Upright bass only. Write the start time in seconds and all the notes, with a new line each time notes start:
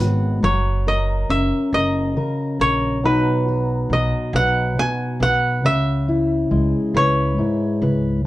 0.00 G#1
0.42 F#1
1.29 F#1
1.73 F#1
2.60 A#1
3.03 B1
3.90 B1
4.33 B1
5.20 B1
5.64 C#2
6.51 C#2
6.94 C#2
7.82 C#2